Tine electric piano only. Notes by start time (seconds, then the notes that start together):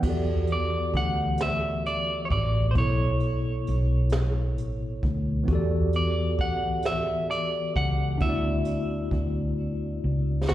Already playing: E3
0.01 B3 F#4
0.05 G4 A4
0.10 D5
2.71 B2 B3
2.77 E4 A4
2.83 C#5
5.43 E3 B3
5.48 F#4 G4
5.53 A4 D5
8.18 B3 D4
8.23 E4 F#4
8.29 D5